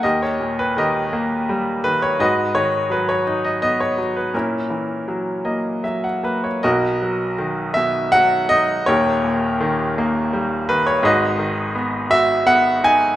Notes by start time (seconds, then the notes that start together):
0.03 D#2 G4 A#4 D#5
0.23 C#5
0.40 A#2
0.59 B4
0.77 D#3 G4 A#4 D#5
1.13 A#3
1.49 G3
1.84 D#3 B4
2.02 C#5
2.19 G#2 F#4 B4 D#5
2.55 D#3 C#5
2.90 F#3 B4
3.09 C#5
3.27 D#4
3.45 D#5
3.62 B3 D#5
3.80 C#5
3.98 F#3
4.16 B4
4.34 A#2 C#4 E4 A#4
4.70 E3
5.08 F#3
5.45 A#3 D#5
5.84 F#3 E5
6.04 F#5
6.23 A#3 B4
6.44 C#5
6.63 B1 B2 F#4 A#4 D#5
7.02 F#3
7.38 D#3
7.74 B2 E5
8.12 F#3 F#5
8.49 D#4 D#5
8.86 D#1 D#2 G4 A#4 C#5
9.24 A#2
9.60 D#3
9.98 A#3
10.33 G3
10.69 D#3 B4
10.87 C#5
11.03 G#1 G#2 F#4 B4 D#5
11.38 D#3
11.75 B3
12.10 F#4 E5
12.46 B3 F#5
12.84 D#4 G#5